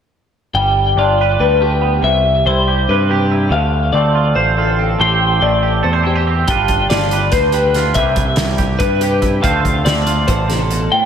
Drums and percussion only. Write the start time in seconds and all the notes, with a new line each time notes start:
6.48 kick, closed hi-hat
6.68 kick, closed hi-hat
6.90 snare, closed hi-hat
7.11 closed hi-hat
7.32 kick, snare, closed hi-hat
7.52 closed hi-hat
7.74 snare, closed hi-hat
7.94 kick, closed hi-hat
8.16 kick, closed hi-hat
8.36 snare, closed hi-hat
8.58 kick, closed hi-hat
8.80 kick, closed hi-hat
9.01 closed hi-hat
9.22 kick, closed hi-hat
9.44 kick, closed hi-hat
9.65 kick, closed hi-hat
9.86 snare, closed hi-hat
10.07 closed hi-hat
10.28 kick, closed hi-hat
10.50 snare, closed hi-hat
10.71 closed hi-hat